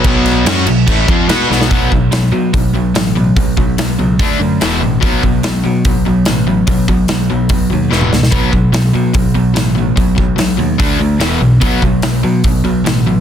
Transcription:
<<
  \new Staff \with { instrumentName = "Overdriven electric guitar" } { \clef bass \time 4/4 \key e \major \tempo 4 = 145 <b, fis b>4 <fis cis' fis'>8 <b, fis>8 <a, e a>8 <eis c' eis'>8 <b fis' b'>8 <b, fis b>8 | r1 | r1 | r1 |
r1 | r1 | r1 | r1 | }
  \new Staff \with { instrumentName = "Overdriven electric guitar" } { \clef bass \time 4/4 \key e \major <b, fis b>4 <fis cis' fis'>8 <b, fis>8 <a, e a>8 <eis c' eis'>8 <b fis' b'>8 <b, fis b>8 | <b, fis b>8 <b, fis>8 <b, fis>8 <b, fis>8 <b, fis>8 <b, fis>8 <b, fis>8 <b, fis>8 | <b, fis>8 <b, fis>8 <b, fis>8 <b, fis>8 <d a d'>8 <d a>8 <e, b, e>8 <e, b,>8 | <b, fis b>8 <b, fis>8 <b, fis>8 <b, fis>8 <b, fis>8 <b, fis>8 <b, fis>8 <b, fis>8 |
<b, fis>8 <b, fis>8 <b, fis>8 <b, fis>8 <b, fis>8 <b, fis>8 <e, b, e>8 <e, b,>8 | <b, fis b>8 <b, fis>8 <b, fis>8 <b, fis>8 <b, fis>8 <b, fis>8 <b, fis>8 <b, fis>8 | <b, fis>8 <b, fis>8 <b, fis>8 <b, fis>8 <d a d'>8 <d a>8 <e, b, e>8 <e, b,>8 | <b, fis b>8 <b, fis>8 <b, fis>8 <b, fis>8 <b, fis>8 <b, fis>8 <b, fis>8 <b, fis>8 | }
  \new Staff \with { instrumentName = "Overdriven electric guitar" } { \clef bass \time 4/4 \key e \major <b, fis b>4 <fis cis' fis'>8 <b, fis>8 <a, e a>8 <eis c' eis'>8 <b fis' b'>8 <b, fis b>8 | <b, fis b>8 <b, fis>8 <b, fis>8 <b, fis>8 <b, fis>8 <b, fis>8 <b, fis>8 <b, fis>8 | <b, fis>8 <b, fis>8 <b, fis>8 <b, fis>8 <d a d'>8 <d a>8 <e, b, e>8 <e, b,>8 | <b, fis b>8 <b, fis>8 <b, fis>8 <b, fis>8 <b, fis>8 <b, fis>8 <b, fis>8 <b, fis>8 |
<b, fis>8 <b, fis>8 <b, fis>8 <b, fis>8 <b, fis>8 <b, fis>8 <e, b, e>8 <e, b,>8 | <b, fis b>8 <b, fis>8 <b, fis>8 <b, fis>8 <b, fis>8 <b, fis>8 <b, fis>8 <b, fis>8 | <b, fis>8 <b, fis>8 <b, fis>8 <b, fis>8 <d a d'>8 <d a>8 <e, b, e>8 <e, b,>8 | <b, fis b>8 <b, fis>8 <b, fis>8 <b, fis>8 <b, fis>8 <b, fis>8 <b, fis>8 <b, fis>8 | }
  \new Staff \with { instrumentName = "Picked electric bass" } { \clef bass \time 4/4 \key e \major b,,4 fis,8 b,,8 a,,8 eis,8 b,8 b,,8 | b,,8 b,,8 b,,8 b,8 b,,8 b,,8 a,,4 | b,,8 b,,8 b,,8 cis,8 d,8 fis,8 e,,8 a,,8 | b,,8 b,,8 b,,8 b,8 b,,8 b,,8 a,,4 |
b,,8 b,,8 b,,8 b,,8 b,,8 dis,8 e,,8 cis,8 | b,,8 b,,8 b,,8 b,8 b,,8 b,,8 a,,4 | b,,8 b,,8 b,,8 dis,8 r8 d,8 e,,8 b,,8 | b,,8 b,,8 b,,8 b,8 b,,8 b,,8 a,,4 | }
  \new DrumStaff \with { instrumentName = "Drums" } \drummode { \time 4/4 <cymc bd>8 <cymc sn>8 <cymc sn>8 cymc8 <cymc bd>8 <cymc bd>8 <cymc sn>8 sn16 sn16 | <hho bd>8 bd8 <hho sn>4 <hho bd>4 <hho sn>4 | <hho bd>8 bd8 <hho sn>4 <hho bd>4 <hho sn>4 | <hho bd>8 bd8 <hho sn>4 <hho bd>4 <hho sn>4 |
<hho bd>8 bd8 <hho sn>4 <hho bd>4 sn16 toml16 sn16 sn16 | <hho bd>8 bd8 <hho sn>4 <hho bd>4 <hho sn>4 | <hho bd>8 bd8 <hho sn>4 <hho bd>4 <hho sn>4 | <hho bd>8 bd8 <hho sn>4 <hho bd>4 <hho sn>4 | }
>>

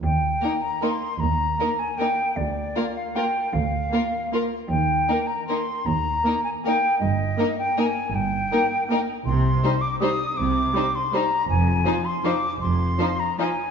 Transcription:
<<
  \new Staff \with { instrumentName = "Flute" } { \time 3/4 \key ees \major \tempo 4 = 157 g''4. bes''8 c'''4 | bes''4. aes''8 g''4 | d''4. f''8 g''4 | f''2. |
g''4. bes''8 c'''4 | bes''4. aes''8 g''4 | ees''4. g''8 aes''4 | g''2~ g''8 r8 |
c'''4. d'''8 ees'''4 | d'''4. c'''8 bes''4 | aes''4. c'''8 d'''4 | c'''4. bes''8 aes''4 | }
  \new Staff \with { instrumentName = "Violin section" } { \time 3/4 \key ees \major r4 bes'4 bes'4 | r4 bes'4 bes'4 | r4 bes'4 bes'4 | r4 bes'4 bes'4 |
r4 bes'4 bes'4 | r4 bes'4 bes'4 | r4 bes'4 bes'4 | r4 bes'4 bes'4 |
r4 c''4 c''4 | r4 c''4 c''4 | r4 c''4 c''4 | r4 c''4 c''4 | }
  \new Staff \with { instrumentName = "Violin section" } { \time 3/4 \key ees \major r4 ees'4 ees'4 | r4 ees'4 ees'4 | r4 f'4 f'4 | r4 f'4 f'4 |
r4 ees'4 ees'4 | r4 ees'4 ees'4 | r4 ees'4 ees'4 | r4 ees'4 ees'4 |
r4 ees'4 ees'4 | r4 ees'4 ees'4 | r4 ees'4 ees'4 | r4 ees'4 ees'4 | }
  \new Staff \with { instrumentName = "Viola section" } { \time 3/4 \key ees \major r4 bes4 bes4 | r4 bes4 bes4 | r4 bes4 bes4 | r4 bes4 bes4 |
r4 bes4 bes4 | r4 bes4 bes4 | r4 bes4 bes4 | r4 bes4 bes4 |
r4 g4 g4 | r4 g4 g4 | r4 f4 f4 | r4 f4 f4 | }
  \new Staff \with { instrumentName = "Cello section" } { \clef bass \time 3/4 \key ees \major ees,4 r2 | ees,4 r2 | d,4 r2 | d,4 r2 |
ees,4 r2 | ees,4 r2 | g,4 r2 | g,4 r2 |
c4 r2 | c4 r2 | f,4 r2 | f,4 r2 | }
  \new Staff \with { instrumentName = "Double bass section" } { \clef bass \time 3/4 \key ees \major ees,4 r2 | ees,4 r2 | d,4 r2 | d,4 r2 |
ees,4 r2 | ees,4 r2 | g,,4 r2 | g,,4 r2 |
c,4 r2 | c,4 r2 | f,,4 r2 | f,,4 r2 | }
>>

